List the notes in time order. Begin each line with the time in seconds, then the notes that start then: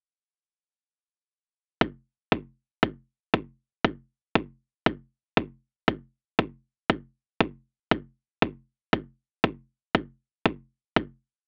1.81 kick
2.32 kick
2.83 kick
3.34 kick
3.85 kick
4.35 kick
4.86 kick
5.37 kick
5.88 kick
6.39 kick
6.90 kick
7.41 kick
7.91 kick
8.42 kick
8.93 kick
9.44 kick
9.95 kick
10.46 kick
10.96 kick